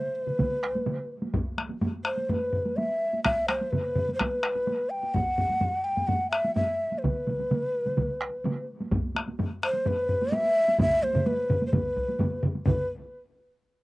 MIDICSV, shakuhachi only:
0, 0, Header, 1, 2, 480
1, 0, Start_track
1, 0, Tempo, 475059
1, 1356, Time_signature, 4, 2, 24, 8
1, 7588, Tempo, 468384
1, 14069, End_track
2, 0, Start_track
2, 0, Title_t, "Shakuhachi"
2, 0, Program_c, 0, 77
2, 0, Note_on_c, 0, 72, 74
2, 154, Note_on_c, 0, 71, 68
2, 169, Note_off_c, 0, 72, 0
2, 1118, Note_off_c, 0, 71, 0
2, 2070, Note_on_c, 0, 72, 71
2, 2325, Note_on_c, 0, 71, 76
2, 2340, Note_off_c, 0, 72, 0
2, 2794, Note_on_c, 0, 76, 82
2, 2809, Note_off_c, 0, 71, 0
2, 3266, Note_off_c, 0, 76, 0
2, 3272, Note_on_c, 0, 76, 83
2, 3500, Note_off_c, 0, 76, 0
2, 3522, Note_on_c, 0, 72, 74
2, 3748, Note_on_c, 0, 71, 75
2, 3763, Note_off_c, 0, 72, 0
2, 4169, Note_off_c, 0, 71, 0
2, 4186, Note_on_c, 0, 72, 61
2, 4244, Note_on_c, 0, 71, 79
2, 4259, Note_off_c, 0, 72, 0
2, 4950, Note_on_c, 0, 79, 82
2, 4965, Note_off_c, 0, 71, 0
2, 5195, Note_on_c, 0, 78, 95
2, 5211, Note_off_c, 0, 79, 0
2, 5902, Note_on_c, 0, 79, 84
2, 5917, Note_off_c, 0, 78, 0
2, 6138, Note_on_c, 0, 78, 87
2, 6153, Note_off_c, 0, 79, 0
2, 6367, Note_off_c, 0, 78, 0
2, 6373, Note_on_c, 0, 76, 85
2, 6606, Note_off_c, 0, 76, 0
2, 6623, Note_on_c, 0, 76, 80
2, 7055, Note_on_c, 0, 72, 54
2, 7070, Note_off_c, 0, 76, 0
2, 7099, Note_on_c, 0, 71, 79
2, 7114, Note_off_c, 0, 72, 0
2, 8788, Note_off_c, 0, 71, 0
2, 9773, Note_on_c, 0, 72, 87
2, 10013, Note_on_c, 0, 71, 92
2, 10028, Note_off_c, 0, 72, 0
2, 10490, Note_on_c, 0, 76, 103
2, 10506, Note_off_c, 0, 71, 0
2, 10964, Note_off_c, 0, 76, 0
2, 10974, Note_on_c, 0, 76, 101
2, 11195, Note_on_c, 0, 72, 93
2, 11210, Note_off_c, 0, 76, 0
2, 11437, Note_on_c, 0, 71, 86
2, 11452, Note_off_c, 0, 72, 0
2, 11843, Note_off_c, 0, 71, 0
2, 11849, Note_on_c, 0, 72, 57
2, 11910, Note_on_c, 0, 71, 78
2, 11925, Note_off_c, 0, 72, 0
2, 12631, Note_off_c, 0, 71, 0
2, 12872, Note_on_c, 0, 71, 75
2, 13094, Note_off_c, 0, 71, 0
2, 14069, End_track
0, 0, End_of_file